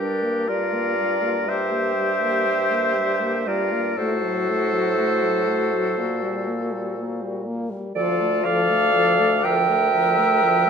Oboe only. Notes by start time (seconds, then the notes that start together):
Already playing: G4
0.48 A#4
1.49 C5
3.48 A#4
3.97 A4
7.97 A4
8.45 D5
9.46 E5